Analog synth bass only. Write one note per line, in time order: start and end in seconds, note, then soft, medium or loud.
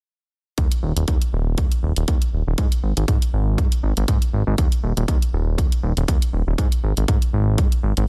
0.58 0.68 D#2 loud
0.83 0.93 D#1 medium
0.96 1.05 D#1 medium
1.08 1.18 D#2 medium
1.33 1.59 D#1 medium
1.58 1.68 D#2 medium
1.83 1.93 D#1 medium
1.97 2.05 D#1 loud
2.08 2.18 D#2 medium
2.33 2.43 D#1 medium
2.47 2.55 D#1 medium
2.58 2.68 G#2 loud
2.83 2.93 G#1 medium
2.97 3.05 G#1 medium
3.08 3.18 G#2 medium
3.33 3.60 G#1 medium
3.58 3.68 G#2 medium
3.83 3.93 G#1 medium
3.97 4.05 G#1 loud
4.08 4.18 G#2 medium
4.33 4.43 G#1 medium
4.47 4.55 G#1 medium
4.58 4.68 D#2 medium
4.83 4.93 D#1 medium
4.97 5.05 D#1 medium
5.08 5.18 D#2 medium
5.33 5.60 D#1 medium
5.58 5.68 D#2 medium
5.83 5.93 D#1 medium
5.97 6.05 D#1 medium
6.08 6.18 D#2 medium
6.33 6.43 D#1 medium
6.47 6.55 D#1 medium
6.58 6.68 G#2 loud
6.84 6.93 G#1 medium
6.97 7.05 G#1 medium
7.08 7.18 G#2 medium
7.33 7.60 G#1 medium
7.58 7.68 G#2 medium
7.83 7.93 G#1 medium
7.97 8.05 G#1 medium